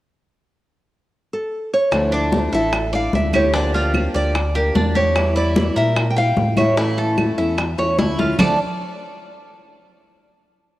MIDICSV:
0, 0, Header, 1, 7, 480
1, 0, Start_track
1, 0, Key_signature, -1, "minor"
1, 0, Tempo, 404040
1, 365, Time_signature, 4, 2, 24, 8
1, 12824, End_track
2, 0, Start_track
2, 0, Title_t, "Nylon-string guitar"
2, 0, Program_c, 0, 24
2, 1583, Note_on_c, 0, 69, 73
2, 2019, Note_off_c, 0, 69, 0
2, 2062, Note_on_c, 0, 73, 86
2, 2537, Note_off_c, 0, 73, 0
2, 2542, Note_on_c, 0, 74, 94
2, 2979, Note_off_c, 0, 74, 0
2, 3024, Note_on_c, 0, 76, 94
2, 3460, Note_off_c, 0, 76, 0
2, 3505, Note_on_c, 0, 77, 86
2, 3739, Note_off_c, 0, 77, 0
2, 3744, Note_on_c, 0, 76, 86
2, 3978, Note_off_c, 0, 76, 0
2, 3983, Note_on_c, 0, 73, 83
2, 4218, Note_off_c, 0, 73, 0
2, 4223, Note_on_c, 0, 74, 90
2, 4436, Note_off_c, 0, 74, 0
2, 4461, Note_on_c, 0, 74, 91
2, 4899, Note_off_c, 0, 74, 0
2, 4938, Note_on_c, 0, 74, 92
2, 5416, Note_on_c, 0, 70, 78
2, 5425, Note_off_c, 0, 74, 0
2, 5896, Note_on_c, 0, 73, 89
2, 5904, Note_off_c, 0, 70, 0
2, 6337, Note_off_c, 0, 73, 0
2, 6380, Note_on_c, 0, 74, 92
2, 6854, Note_off_c, 0, 74, 0
2, 6859, Note_on_c, 0, 76, 93
2, 7248, Note_off_c, 0, 76, 0
2, 7252, Note_on_c, 0, 79, 68
2, 7331, Note_off_c, 0, 79, 0
2, 7339, Note_on_c, 0, 77, 85
2, 7814, Note_off_c, 0, 77, 0
2, 7819, Note_on_c, 0, 76, 78
2, 9447, Note_off_c, 0, 76, 0
2, 9981, Note_on_c, 0, 81, 73
2, 10198, Note_off_c, 0, 81, 0
2, 12824, End_track
3, 0, Start_track
3, 0, Title_t, "Cuban tres"
3, 0, Program_c, 1, 25
3, 2520, Note_on_c, 1, 62, 75
3, 2986, Note_off_c, 1, 62, 0
3, 3001, Note_on_c, 1, 69, 64
3, 3467, Note_off_c, 1, 69, 0
3, 3479, Note_on_c, 1, 74, 68
3, 3946, Note_off_c, 1, 74, 0
3, 3964, Note_on_c, 1, 67, 64
3, 4196, Note_off_c, 1, 67, 0
3, 4201, Note_on_c, 1, 62, 65
3, 4434, Note_off_c, 1, 62, 0
3, 4447, Note_on_c, 1, 65, 63
3, 4910, Note_off_c, 1, 65, 0
3, 4923, Note_on_c, 1, 74, 68
3, 5389, Note_off_c, 1, 74, 0
3, 5407, Note_on_c, 1, 67, 69
3, 5638, Note_off_c, 1, 67, 0
3, 5645, Note_on_c, 1, 62, 73
3, 5877, Note_off_c, 1, 62, 0
3, 5883, Note_on_c, 1, 67, 62
3, 6349, Note_off_c, 1, 67, 0
3, 6365, Note_on_c, 1, 64, 74
3, 6831, Note_off_c, 1, 64, 0
3, 6845, Note_on_c, 1, 70, 63
3, 7311, Note_off_c, 1, 70, 0
3, 7324, Note_on_c, 1, 79, 67
3, 7791, Note_off_c, 1, 79, 0
3, 7809, Note_on_c, 1, 73, 64
3, 8041, Note_off_c, 1, 73, 0
3, 8049, Note_on_c, 1, 64, 67
3, 8281, Note_off_c, 1, 64, 0
3, 8290, Note_on_c, 1, 69, 63
3, 8755, Note_off_c, 1, 69, 0
3, 8766, Note_on_c, 1, 76, 62
3, 9233, Note_off_c, 1, 76, 0
3, 9250, Note_on_c, 1, 73, 63
3, 9482, Note_off_c, 1, 73, 0
3, 9491, Note_on_c, 1, 64, 69
3, 9723, Note_off_c, 1, 64, 0
3, 9727, Note_on_c, 1, 65, 62
3, 9960, Note_off_c, 1, 65, 0
3, 9965, Note_on_c, 1, 62, 79
3, 9970, Note_on_c, 1, 69, 75
3, 9976, Note_on_c, 1, 74, 91
3, 10190, Note_off_c, 1, 62, 0
3, 10193, Note_off_c, 1, 69, 0
3, 10196, Note_off_c, 1, 74, 0
3, 12824, End_track
4, 0, Start_track
4, 0, Title_t, "Steel-string acoustic guitar"
4, 0, Program_c, 2, 25
4, 2273, Note_on_c, 2, 50, 70
4, 2282, Note_on_c, 2, 53, 64
4, 2289, Note_on_c, 2, 57, 75
4, 2292, Note_on_c, 2, 62, 71
4, 2298, Note_on_c, 2, 64, 71
4, 2744, Note_off_c, 2, 53, 0
4, 2748, Note_off_c, 2, 50, 0
4, 2755, Note_off_c, 2, 57, 0
4, 2757, Note_off_c, 2, 62, 0
4, 2758, Note_on_c, 2, 53, 44
4, 2760, Note_off_c, 2, 64, 0
4, 2769, Note_on_c, 2, 57, 47
4, 2776, Note_on_c, 2, 62, 49
4, 2780, Note_on_c, 2, 64, 50
4, 2988, Note_off_c, 2, 64, 0
4, 2990, Note_off_c, 2, 53, 0
4, 2996, Note_off_c, 2, 57, 0
4, 2996, Note_off_c, 2, 62, 0
4, 3003, Note_on_c, 2, 64, 63
4, 3010, Note_on_c, 2, 62, 63
4, 3018, Note_on_c, 2, 57, 59
4, 3025, Note_on_c, 2, 53, 51
4, 3232, Note_off_c, 2, 64, 0
4, 3233, Note_off_c, 2, 53, 0
4, 3236, Note_off_c, 2, 62, 0
4, 3240, Note_off_c, 2, 57, 0
4, 3481, Note_on_c, 2, 64, 46
4, 3492, Note_on_c, 2, 62, 46
4, 3502, Note_on_c, 2, 57, 37
4, 3945, Note_off_c, 2, 64, 0
4, 3954, Note_off_c, 2, 62, 0
4, 3958, Note_off_c, 2, 57, 0
4, 3959, Note_on_c, 2, 64, 60
4, 3968, Note_on_c, 2, 62, 53
4, 3972, Note_on_c, 2, 57, 51
4, 3980, Note_on_c, 2, 53, 51
4, 4191, Note_off_c, 2, 64, 0
4, 4192, Note_off_c, 2, 53, 0
4, 4195, Note_off_c, 2, 62, 0
4, 4197, Note_off_c, 2, 57, 0
4, 4199, Note_on_c, 2, 50, 71
4, 4206, Note_on_c, 2, 53, 74
4, 4213, Note_on_c, 2, 58, 68
4, 4218, Note_on_c, 2, 62, 74
4, 4221, Note_on_c, 2, 67, 74
4, 4667, Note_off_c, 2, 53, 0
4, 4671, Note_off_c, 2, 50, 0
4, 4674, Note_off_c, 2, 58, 0
4, 4681, Note_off_c, 2, 62, 0
4, 4682, Note_off_c, 2, 67, 0
4, 4682, Note_on_c, 2, 53, 43
4, 4689, Note_on_c, 2, 58, 48
4, 4698, Note_on_c, 2, 62, 49
4, 4701, Note_on_c, 2, 67, 50
4, 4907, Note_off_c, 2, 67, 0
4, 4912, Note_off_c, 2, 53, 0
4, 4915, Note_off_c, 2, 62, 0
4, 4916, Note_off_c, 2, 58, 0
4, 4922, Note_on_c, 2, 67, 63
4, 4929, Note_on_c, 2, 62, 64
4, 4939, Note_on_c, 2, 58, 60
4, 4944, Note_on_c, 2, 53, 50
4, 5152, Note_off_c, 2, 67, 0
4, 5155, Note_off_c, 2, 53, 0
4, 5156, Note_off_c, 2, 62, 0
4, 5161, Note_off_c, 2, 58, 0
4, 5400, Note_on_c, 2, 67, 48
4, 5414, Note_on_c, 2, 62, 44
4, 5423, Note_on_c, 2, 58, 39
4, 5872, Note_off_c, 2, 67, 0
4, 5876, Note_off_c, 2, 62, 0
4, 5884, Note_off_c, 2, 58, 0
4, 5885, Note_on_c, 2, 67, 54
4, 5891, Note_on_c, 2, 62, 58
4, 5900, Note_on_c, 2, 58, 49
4, 5905, Note_on_c, 2, 53, 49
4, 6115, Note_off_c, 2, 67, 0
4, 6116, Note_off_c, 2, 53, 0
4, 6118, Note_off_c, 2, 62, 0
4, 6121, Note_on_c, 2, 52, 64
4, 6122, Note_off_c, 2, 58, 0
4, 6135, Note_on_c, 2, 55, 69
4, 6141, Note_on_c, 2, 64, 73
4, 6591, Note_off_c, 2, 52, 0
4, 6600, Note_off_c, 2, 55, 0
4, 6603, Note_off_c, 2, 64, 0
4, 6605, Note_on_c, 2, 52, 50
4, 6616, Note_on_c, 2, 55, 49
4, 6627, Note_on_c, 2, 64, 48
4, 6832, Note_off_c, 2, 64, 0
4, 6835, Note_off_c, 2, 52, 0
4, 6841, Note_off_c, 2, 55, 0
4, 6846, Note_on_c, 2, 64, 62
4, 6871, Note_on_c, 2, 55, 51
4, 7076, Note_off_c, 2, 64, 0
4, 7079, Note_off_c, 2, 55, 0
4, 7330, Note_on_c, 2, 64, 46
4, 7353, Note_on_c, 2, 55, 37
4, 7788, Note_off_c, 2, 64, 0
4, 7802, Note_on_c, 2, 64, 64
4, 7810, Note_off_c, 2, 55, 0
4, 7825, Note_on_c, 2, 55, 53
4, 8035, Note_off_c, 2, 64, 0
4, 8041, Note_on_c, 2, 52, 68
4, 8044, Note_off_c, 2, 55, 0
4, 8048, Note_on_c, 2, 57, 75
4, 8057, Note_on_c, 2, 61, 72
4, 8063, Note_on_c, 2, 64, 76
4, 8510, Note_off_c, 2, 52, 0
4, 8518, Note_off_c, 2, 57, 0
4, 8523, Note_off_c, 2, 61, 0
4, 8524, Note_on_c, 2, 52, 43
4, 8526, Note_off_c, 2, 64, 0
4, 8533, Note_on_c, 2, 57, 49
4, 8539, Note_on_c, 2, 61, 50
4, 8547, Note_on_c, 2, 64, 53
4, 8750, Note_off_c, 2, 64, 0
4, 8756, Note_off_c, 2, 52, 0
4, 8761, Note_off_c, 2, 57, 0
4, 8761, Note_off_c, 2, 61, 0
4, 8764, Note_on_c, 2, 64, 60
4, 8775, Note_on_c, 2, 61, 58
4, 8785, Note_on_c, 2, 57, 49
4, 8996, Note_off_c, 2, 64, 0
4, 8997, Note_off_c, 2, 57, 0
4, 9002, Note_off_c, 2, 61, 0
4, 9240, Note_on_c, 2, 64, 49
4, 9253, Note_on_c, 2, 61, 39
4, 9261, Note_on_c, 2, 57, 39
4, 9708, Note_off_c, 2, 64, 0
4, 9721, Note_off_c, 2, 61, 0
4, 9722, Note_on_c, 2, 64, 59
4, 9725, Note_off_c, 2, 57, 0
4, 9735, Note_on_c, 2, 61, 53
4, 9742, Note_on_c, 2, 57, 48
4, 9956, Note_off_c, 2, 64, 0
4, 9958, Note_off_c, 2, 57, 0
4, 9962, Note_off_c, 2, 61, 0
4, 9962, Note_on_c, 2, 50, 71
4, 9968, Note_on_c, 2, 53, 74
4, 9972, Note_on_c, 2, 57, 76
4, 9979, Note_on_c, 2, 62, 75
4, 9985, Note_on_c, 2, 64, 78
4, 10157, Note_off_c, 2, 50, 0
4, 10160, Note_off_c, 2, 53, 0
4, 10162, Note_off_c, 2, 57, 0
4, 10166, Note_off_c, 2, 62, 0
4, 10169, Note_off_c, 2, 64, 0
4, 12824, End_track
5, 0, Start_track
5, 0, Title_t, "Analog synth bass"
5, 0, Program_c, 3, 38
5, 2278, Note_on_c, 3, 38, 84
5, 2952, Note_off_c, 3, 38, 0
5, 3001, Note_on_c, 3, 33, 90
5, 3674, Note_off_c, 3, 33, 0
5, 3721, Note_on_c, 3, 38, 87
5, 4850, Note_off_c, 3, 38, 0
5, 4928, Note_on_c, 3, 38, 95
5, 5598, Note_off_c, 3, 38, 0
5, 5647, Note_on_c, 3, 40, 89
5, 6775, Note_off_c, 3, 40, 0
5, 6845, Note_on_c, 3, 46, 100
5, 7518, Note_off_c, 3, 46, 0
5, 7568, Note_on_c, 3, 45, 86
5, 8697, Note_off_c, 3, 45, 0
5, 8772, Note_on_c, 3, 40, 96
5, 9217, Note_off_c, 3, 40, 0
5, 9249, Note_on_c, 3, 40, 70
5, 9472, Note_off_c, 3, 40, 0
5, 9492, Note_on_c, 3, 38, 87
5, 9914, Note_off_c, 3, 38, 0
5, 9966, Note_on_c, 3, 38, 83
5, 10190, Note_off_c, 3, 38, 0
5, 12824, End_track
6, 0, Start_track
6, 0, Title_t, "Muted steel-string acoustic guitar strokes"
6, 3247, Note_on_c, 9, 29, 55
6, 3365, Note_off_c, 9, 29, 0
6, 5168, Note_on_c, 9, 29, 62
6, 5286, Note_off_c, 9, 29, 0
6, 7088, Note_on_c, 9, 29, 54
6, 7207, Note_off_c, 9, 29, 0
6, 9010, Note_on_c, 9, 29, 54
6, 9129, Note_off_c, 9, 29, 0
6, 12824, End_track
7, 0, Start_track
7, 0, Title_t, "Drums"
7, 2281, Note_on_c, 9, 60, 63
7, 2282, Note_on_c, 9, 63, 31
7, 2282, Note_on_c, 9, 75, 57
7, 2400, Note_off_c, 9, 60, 0
7, 2401, Note_off_c, 9, 63, 0
7, 2401, Note_off_c, 9, 75, 0
7, 2521, Note_on_c, 9, 63, 30
7, 2640, Note_off_c, 9, 63, 0
7, 2760, Note_on_c, 9, 63, 84
7, 2761, Note_on_c, 9, 60, 55
7, 2878, Note_off_c, 9, 63, 0
7, 2879, Note_off_c, 9, 60, 0
7, 3001, Note_on_c, 9, 63, 31
7, 3002, Note_on_c, 9, 60, 32
7, 3120, Note_off_c, 9, 63, 0
7, 3121, Note_off_c, 9, 60, 0
7, 3239, Note_on_c, 9, 63, 28
7, 3240, Note_on_c, 9, 60, 65
7, 3242, Note_on_c, 9, 75, 61
7, 3358, Note_off_c, 9, 63, 0
7, 3359, Note_off_c, 9, 60, 0
7, 3361, Note_off_c, 9, 75, 0
7, 3481, Note_on_c, 9, 63, 31
7, 3486, Note_on_c, 9, 60, 31
7, 3600, Note_off_c, 9, 63, 0
7, 3605, Note_off_c, 9, 60, 0
7, 3721, Note_on_c, 9, 63, 78
7, 3724, Note_on_c, 9, 60, 32
7, 3724, Note_on_c, 9, 61, 75
7, 3840, Note_off_c, 9, 63, 0
7, 3843, Note_off_c, 9, 60, 0
7, 3843, Note_off_c, 9, 61, 0
7, 3959, Note_on_c, 9, 63, 77
7, 3966, Note_on_c, 9, 75, 60
7, 4078, Note_off_c, 9, 63, 0
7, 4085, Note_off_c, 9, 75, 0
7, 4201, Note_on_c, 9, 60, 67
7, 4203, Note_on_c, 9, 63, 33
7, 4320, Note_off_c, 9, 60, 0
7, 4322, Note_off_c, 9, 63, 0
7, 4437, Note_on_c, 9, 63, 31
7, 4556, Note_off_c, 9, 63, 0
7, 4679, Note_on_c, 9, 63, 51
7, 4687, Note_on_c, 9, 60, 52
7, 4687, Note_on_c, 9, 75, 61
7, 4798, Note_off_c, 9, 63, 0
7, 4805, Note_off_c, 9, 75, 0
7, 4806, Note_off_c, 9, 60, 0
7, 4920, Note_on_c, 9, 63, 33
7, 4927, Note_on_c, 9, 60, 32
7, 5039, Note_off_c, 9, 63, 0
7, 5046, Note_off_c, 9, 60, 0
7, 5165, Note_on_c, 9, 63, 29
7, 5167, Note_on_c, 9, 75, 62
7, 5169, Note_on_c, 9, 60, 62
7, 5284, Note_off_c, 9, 63, 0
7, 5286, Note_off_c, 9, 75, 0
7, 5288, Note_off_c, 9, 60, 0
7, 5409, Note_on_c, 9, 63, 31
7, 5410, Note_on_c, 9, 60, 32
7, 5528, Note_off_c, 9, 63, 0
7, 5529, Note_off_c, 9, 60, 0
7, 5648, Note_on_c, 9, 60, 31
7, 5648, Note_on_c, 9, 61, 74
7, 5648, Note_on_c, 9, 63, 75
7, 5767, Note_off_c, 9, 60, 0
7, 5767, Note_off_c, 9, 61, 0
7, 5767, Note_off_c, 9, 63, 0
7, 5884, Note_on_c, 9, 63, 62
7, 6003, Note_off_c, 9, 63, 0
7, 6125, Note_on_c, 9, 63, 34
7, 6126, Note_on_c, 9, 60, 62
7, 6128, Note_on_c, 9, 75, 60
7, 6244, Note_off_c, 9, 63, 0
7, 6245, Note_off_c, 9, 60, 0
7, 6247, Note_off_c, 9, 75, 0
7, 6366, Note_on_c, 9, 63, 32
7, 6485, Note_off_c, 9, 63, 0
7, 6606, Note_on_c, 9, 63, 89
7, 6610, Note_on_c, 9, 60, 52
7, 6725, Note_off_c, 9, 63, 0
7, 6728, Note_off_c, 9, 60, 0
7, 6848, Note_on_c, 9, 60, 32
7, 6851, Note_on_c, 9, 63, 31
7, 6967, Note_off_c, 9, 60, 0
7, 6970, Note_off_c, 9, 63, 0
7, 7086, Note_on_c, 9, 60, 62
7, 7086, Note_on_c, 9, 75, 64
7, 7087, Note_on_c, 9, 63, 30
7, 7205, Note_off_c, 9, 60, 0
7, 7205, Note_off_c, 9, 63, 0
7, 7205, Note_off_c, 9, 75, 0
7, 7324, Note_on_c, 9, 60, 33
7, 7326, Note_on_c, 9, 63, 31
7, 7443, Note_off_c, 9, 60, 0
7, 7445, Note_off_c, 9, 63, 0
7, 7565, Note_on_c, 9, 63, 78
7, 7567, Note_on_c, 9, 60, 32
7, 7567, Note_on_c, 9, 61, 72
7, 7684, Note_off_c, 9, 63, 0
7, 7686, Note_off_c, 9, 60, 0
7, 7686, Note_off_c, 9, 61, 0
7, 7801, Note_on_c, 9, 63, 74
7, 7809, Note_on_c, 9, 75, 64
7, 7920, Note_off_c, 9, 63, 0
7, 7927, Note_off_c, 9, 75, 0
7, 8040, Note_on_c, 9, 63, 34
7, 8048, Note_on_c, 9, 60, 61
7, 8159, Note_off_c, 9, 63, 0
7, 8167, Note_off_c, 9, 60, 0
7, 8285, Note_on_c, 9, 63, 31
7, 8404, Note_off_c, 9, 63, 0
7, 8524, Note_on_c, 9, 63, 51
7, 8528, Note_on_c, 9, 75, 59
7, 8529, Note_on_c, 9, 60, 53
7, 8643, Note_off_c, 9, 63, 0
7, 8647, Note_off_c, 9, 75, 0
7, 8648, Note_off_c, 9, 60, 0
7, 8765, Note_on_c, 9, 60, 32
7, 8765, Note_on_c, 9, 63, 32
7, 8884, Note_off_c, 9, 60, 0
7, 8884, Note_off_c, 9, 63, 0
7, 9003, Note_on_c, 9, 75, 62
7, 9008, Note_on_c, 9, 60, 61
7, 9008, Note_on_c, 9, 63, 31
7, 9122, Note_off_c, 9, 75, 0
7, 9126, Note_off_c, 9, 63, 0
7, 9127, Note_off_c, 9, 60, 0
7, 9247, Note_on_c, 9, 60, 69
7, 9251, Note_on_c, 9, 63, 31
7, 9366, Note_off_c, 9, 60, 0
7, 9370, Note_off_c, 9, 63, 0
7, 9487, Note_on_c, 9, 63, 80
7, 9488, Note_on_c, 9, 60, 86
7, 9605, Note_off_c, 9, 63, 0
7, 9607, Note_off_c, 9, 60, 0
7, 9728, Note_on_c, 9, 61, 85
7, 9729, Note_on_c, 9, 63, 64
7, 9847, Note_off_c, 9, 61, 0
7, 9847, Note_off_c, 9, 63, 0
7, 9964, Note_on_c, 9, 64, 93
7, 9969, Note_on_c, 9, 75, 83
7, 9973, Note_on_c, 9, 61, 88
7, 10083, Note_off_c, 9, 64, 0
7, 10087, Note_off_c, 9, 75, 0
7, 10092, Note_off_c, 9, 61, 0
7, 12824, End_track
0, 0, End_of_file